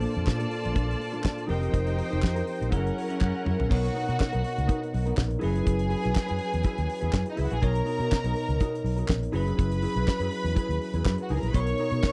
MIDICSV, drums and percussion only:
0, 0, Header, 1, 2, 480
1, 0, Start_track
1, 0, Key_signature, -2, "major"
1, 0, Tempo, 490196
1, 1708, Time_signature, 4, 2, 24, 8
1, 3628, Key_signature, 5, "major"
1, 11870, End_track
2, 0, Start_track
2, 0, Title_t, "Drums"
2, 9, Note_on_c, 9, 46, 74
2, 107, Note_off_c, 9, 46, 0
2, 151, Note_on_c, 9, 42, 43
2, 249, Note_off_c, 9, 42, 0
2, 261, Note_on_c, 9, 39, 83
2, 266, Note_on_c, 9, 36, 118
2, 273, Note_on_c, 9, 38, 94
2, 359, Note_off_c, 9, 39, 0
2, 364, Note_off_c, 9, 36, 0
2, 371, Note_off_c, 9, 38, 0
2, 389, Note_on_c, 9, 42, 52
2, 487, Note_off_c, 9, 42, 0
2, 501, Note_on_c, 9, 46, 60
2, 599, Note_off_c, 9, 46, 0
2, 638, Note_on_c, 9, 42, 52
2, 736, Note_off_c, 9, 42, 0
2, 740, Note_on_c, 9, 42, 73
2, 743, Note_on_c, 9, 36, 124
2, 838, Note_off_c, 9, 42, 0
2, 841, Note_off_c, 9, 36, 0
2, 890, Note_on_c, 9, 42, 44
2, 988, Note_off_c, 9, 42, 0
2, 994, Note_on_c, 9, 46, 74
2, 1092, Note_off_c, 9, 46, 0
2, 1113, Note_on_c, 9, 42, 45
2, 1211, Note_off_c, 9, 42, 0
2, 1212, Note_on_c, 9, 39, 115
2, 1222, Note_on_c, 9, 36, 99
2, 1231, Note_on_c, 9, 38, 104
2, 1310, Note_off_c, 9, 39, 0
2, 1320, Note_off_c, 9, 36, 0
2, 1329, Note_off_c, 9, 38, 0
2, 1352, Note_on_c, 9, 42, 46
2, 1450, Note_off_c, 9, 42, 0
2, 1457, Note_on_c, 9, 46, 76
2, 1555, Note_off_c, 9, 46, 0
2, 1595, Note_on_c, 9, 42, 51
2, 1692, Note_off_c, 9, 42, 0
2, 1701, Note_on_c, 9, 36, 107
2, 1701, Note_on_c, 9, 42, 62
2, 1799, Note_off_c, 9, 36, 0
2, 1799, Note_off_c, 9, 42, 0
2, 1829, Note_on_c, 9, 42, 55
2, 1927, Note_off_c, 9, 42, 0
2, 1942, Note_on_c, 9, 46, 68
2, 2040, Note_off_c, 9, 46, 0
2, 2083, Note_on_c, 9, 42, 46
2, 2179, Note_on_c, 9, 39, 97
2, 2181, Note_off_c, 9, 42, 0
2, 2188, Note_on_c, 9, 36, 107
2, 2198, Note_on_c, 9, 38, 95
2, 2277, Note_off_c, 9, 39, 0
2, 2286, Note_off_c, 9, 36, 0
2, 2296, Note_off_c, 9, 38, 0
2, 2313, Note_on_c, 9, 42, 52
2, 2411, Note_off_c, 9, 42, 0
2, 2421, Note_on_c, 9, 46, 56
2, 2519, Note_off_c, 9, 46, 0
2, 2569, Note_on_c, 9, 42, 54
2, 2663, Note_off_c, 9, 42, 0
2, 2663, Note_on_c, 9, 42, 68
2, 2665, Note_on_c, 9, 36, 110
2, 2761, Note_off_c, 9, 42, 0
2, 2763, Note_off_c, 9, 36, 0
2, 2809, Note_on_c, 9, 42, 42
2, 2906, Note_off_c, 9, 42, 0
2, 2921, Note_on_c, 9, 46, 79
2, 3019, Note_off_c, 9, 46, 0
2, 3036, Note_on_c, 9, 42, 49
2, 3134, Note_off_c, 9, 42, 0
2, 3142, Note_on_c, 9, 39, 120
2, 3145, Note_on_c, 9, 36, 105
2, 3147, Note_on_c, 9, 48, 53
2, 3240, Note_off_c, 9, 39, 0
2, 3243, Note_off_c, 9, 36, 0
2, 3245, Note_off_c, 9, 48, 0
2, 3391, Note_on_c, 9, 45, 101
2, 3489, Note_off_c, 9, 45, 0
2, 3522, Note_on_c, 9, 43, 95
2, 3620, Note_off_c, 9, 43, 0
2, 3632, Note_on_c, 9, 36, 117
2, 3640, Note_on_c, 9, 49, 110
2, 3730, Note_off_c, 9, 36, 0
2, 3738, Note_off_c, 9, 49, 0
2, 3765, Note_on_c, 9, 42, 62
2, 3863, Note_off_c, 9, 42, 0
2, 3870, Note_on_c, 9, 46, 72
2, 3968, Note_off_c, 9, 46, 0
2, 4015, Note_on_c, 9, 42, 50
2, 4113, Note_off_c, 9, 42, 0
2, 4114, Note_on_c, 9, 39, 96
2, 4117, Note_on_c, 9, 36, 104
2, 4125, Note_on_c, 9, 38, 106
2, 4212, Note_off_c, 9, 39, 0
2, 4215, Note_off_c, 9, 36, 0
2, 4223, Note_off_c, 9, 38, 0
2, 4238, Note_on_c, 9, 42, 49
2, 4336, Note_off_c, 9, 42, 0
2, 4350, Note_on_c, 9, 46, 63
2, 4448, Note_off_c, 9, 46, 0
2, 4489, Note_on_c, 9, 42, 62
2, 4587, Note_off_c, 9, 42, 0
2, 4591, Note_on_c, 9, 42, 73
2, 4593, Note_on_c, 9, 36, 118
2, 4689, Note_off_c, 9, 42, 0
2, 4691, Note_off_c, 9, 36, 0
2, 4734, Note_on_c, 9, 42, 43
2, 4832, Note_off_c, 9, 42, 0
2, 4839, Note_on_c, 9, 46, 74
2, 4937, Note_off_c, 9, 46, 0
2, 4960, Note_on_c, 9, 42, 47
2, 5058, Note_off_c, 9, 42, 0
2, 5065, Note_on_c, 9, 39, 121
2, 5070, Note_on_c, 9, 36, 99
2, 5072, Note_on_c, 9, 38, 101
2, 5163, Note_off_c, 9, 39, 0
2, 5168, Note_off_c, 9, 36, 0
2, 5170, Note_off_c, 9, 38, 0
2, 5195, Note_on_c, 9, 42, 47
2, 5293, Note_off_c, 9, 42, 0
2, 5299, Note_on_c, 9, 46, 77
2, 5397, Note_off_c, 9, 46, 0
2, 5440, Note_on_c, 9, 42, 47
2, 5538, Note_off_c, 9, 42, 0
2, 5547, Note_on_c, 9, 42, 68
2, 5550, Note_on_c, 9, 36, 113
2, 5645, Note_off_c, 9, 42, 0
2, 5648, Note_off_c, 9, 36, 0
2, 5671, Note_on_c, 9, 42, 60
2, 5769, Note_off_c, 9, 42, 0
2, 5779, Note_on_c, 9, 46, 71
2, 5877, Note_off_c, 9, 46, 0
2, 5921, Note_on_c, 9, 42, 50
2, 6019, Note_off_c, 9, 42, 0
2, 6027, Note_on_c, 9, 39, 88
2, 6034, Note_on_c, 9, 36, 114
2, 6035, Note_on_c, 9, 38, 109
2, 6125, Note_off_c, 9, 39, 0
2, 6132, Note_off_c, 9, 36, 0
2, 6133, Note_off_c, 9, 38, 0
2, 6152, Note_on_c, 9, 42, 56
2, 6250, Note_off_c, 9, 42, 0
2, 6252, Note_on_c, 9, 46, 61
2, 6350, Note_off_c, 9, 46, 0
2, 6399, Note_on_c, 9, 42, 59
2, 6496, Note_off_c, 9, 42, 0
2, 6496, Note_on_c, 9, 42, 74
2, 6507, Note_on_c, 9, 36, 105
2, 6594, Note_off_c, 9, 42, 0
2, 6605, Note_off_c, 9, 36, 0
2, 6638, Note_on_c, 9, 42, 46
2, 6736, Note_off_c, 9, 42, 0
2, 6752, Note_on_c, 9, 46, 82
2, 6850, Note_off_c, 9, 46, 0
2, 6869, Note_on_c, 9, 42, 48
2, 6967, Note_off_c, 9, 42, 0
2, 6979, Note_on_c, 9, 39, 123
2, 6987, Note_on_c, 9, 36, 114
2, 6990, Note_on_c, 9, 38, 113
2, 7077, Note_off_c, 9, 39, 0
2, 7085, Note_off_c, 9, 36, 0
2, 7088, Note_off_c, 9, 38, 0
2, 7108, Note_on_c, 9, 42, 45
2, 7205, Note_off_c, 9, 42, 0
2, 7217, Note_on_c, 9, 46, 82
2, 7315, Note_off_c, 9, 46, 0
2, 7350, Note_on_c, 9, 42, 45
2, 7448, Note_off_c, 9, 42, 0
2, 7463, Note_on_c, 9, 42, 61
2, 7468, Note_on_c, 9, 36, 114
2, 7561, Note_off_c, 9, 42, 0
2, 7566, Note_off_c, 9, 36, 0
2, 7592, Note_on_c, 9, 42, 54
2, 7690, Note_off_c, 9, 42, 0
2, 7695, Note_on_c, 9, 46, 72
2, 7793, Note_off_c, 9, 46, 0
2, 7840, Note_on_c, 9, 42, 51
2, 7938, Note_off_c, 9, 42, 0
2, 7951, Note_on_c, 9, 36, 108
2, 7952, Note_on_c, 9, 39, 98
2, 7958, Note_on_c, 9, 38, 110
2, 8049, Note_off_c, 9, 36, 0
2, 8050, Note_off_c, 9, 39, 0
2, 8056, Note_off_c, 9, 38, 0
2, 8072, Note_on_c, 9, 42, 56
2, 8170, Note_off_c, 9, 42, 0
2, 8183, Note_on_c, 9, 46, 63
2, 8281, Note_off_c, 9, 46, 0
2, 8326, Note_on_c, 9, 42, 64
2, 8423, Note_off_c, 9, 42, 0
2, 8423, Note_on_c, 9, 42, 78
2, 8428, Note_on_c, 9, 36, 113
2, 8521, Note_off_c, 9, 42, 0
2, 8526, Note_off_c, 9, 36, 0
2, 8571, Note_on_c, 9, 42, 44
2, 8669, Note_off_c, 9, 42, 0
2, 8675, Note_on_c, 9, 46, 88
2, 8772, Note_off_c, 9, 46, 0
2, 8790, Note_on_c, 9, 42, 49
2, 8888, Note_off_c, 9, 42, 0
2, 8893, Note_on_c, 9, 39, 127
2, 8905, Note_on_c, 9, 36, 98
2, 8911, Note_on_c, 9, 38, 119
2, 8991, Note_off_c, 9, 39, 0
2, 9003, Note_off_c, 9, 36, 0
2, 9009, Note_off_c, 9, 38, 0
2, 9038, Note_on_c, 9, 42, 48
2, 9136, Note_off_c, 9, 42, 0
2, 9136, Note_on_c, 9, 46, 79
2, 9234, Note_off_c, 9, 46, 0
2, 9280, Note_on_c, 9, 42, 51
2, 9378, Note_off_c, 9, 42, 0
2, 9388, Note_on_c, 9, 36, 117
2, 9391, Note_on_c, 9, 42, 72
2, 9486, Note_off_c, 9, 36, 0
2, 9489, Note_off_c, 9, 42, 0
2, 9514, Note_on_c, 9, 42, 58
2, 9612, Note_off_c, 9, 42, 0
2, 9618, Note_on_c, 9, 46, 68
2, 9716, Note_off_c, 9, 46, 0
2, 9760, Note_on_c, 9, 42, 49
2, 9858, Note_off_c, 9, 42, 0
2, 9868, Note_on_c, 9, 39, 89
2, 9869, Note_on_c, 9, 36, 120
2, 9874, Note_on_c, 9, 38, 98
2, 9966, Note_off_c, 9, 39, 0
2, 9967, Note_off_c, 9, 36, 0
2, 9972, Note_off_c, 9, 38, 0
2, 9987, Note_on_c, 9, 42, 51
2, 10085, Note_off_c, 9, 42, 0
2, 10094, Note_on_c, 9, 46, 64
2, 10192, Note_off_c, 9, 46, 0
2, 10243, Note_on_c, 9, 42, 62
2, 10341, Note_off_c, 9, 42, 0
2, 10343, Note_on_c, 9, 42, 74
2, 10345, Note_on_c, 9, 36, 107
2, 10441, Note_off_c, 9, 42, 0
2, 10443, Note_off_c, 9, 36, 0
2, 10484, Note_on_c, 9, 42, 46
2, 10582, Note_off_c, 9, 42, 0
2, 10591, Note_on_c, 9, 46, 73
2, 10688, Note_off_c, 9, 46, 0
2, 10708, Note_on_c, 9, 42, 48
2, 10806, Note_off_c, 9, 42, 0
2, 10824, Note_on_c, 9, 36, 100
2, 10826, Note_on_c, 9, 39, 127
2, 10833, Note_on_c, 9, 38, 109
2, 10922, Note_off_c, 9, 36, 0
2, 10923, Note_off_c, 9, 39, 0
2, 10931, Note_off_c, 9, 38, 0
2, 10948, Note_on_c, 9, 42, 46
2, 11046, Note_off_c, 9, 42, 0
2, 11053, Note_on_c, 9, 46, 71
2, 11151, Note_off_c, 9, 46, 0
2, 11191, Note_on_c, 9, 42, 51
2, 11289, Note_off_c, 9, 42, 0
2, 11304, Note_on_c, 9, 36, 111
2, 11304, Note_on_c, 9, 42, 66
2, 11402, Note_off_c, 9, 36, 0
2, 11402, Note_off_c, 9, 42, 0
2, 11423, Note_on_c, 9, 42, 54
2, 11521, Note_off_c, 9, 42, 0
2, 11531, Note_on_c, 9, 46, 74
2, 11629, Note_off_c, 9, 46, 0
2, 11667, Note_on_c, 9, 42, 46
2, 11765, Note_off_c, 9, 42, 0
2, 11783, Note_on_c, 9, 38, 100
2, 11784, Note_on_c, 9, 36, 120
2, 11784, Note_on_c, 9, 39, 85
2, 11870, Note_off_c, 9, 36, 0
2, 11870, Note_off_c, 9, 38, 0
2, 11870, Note_off_c, 9, 39, 0
2, 11870, End_track
0, 0, End_of_file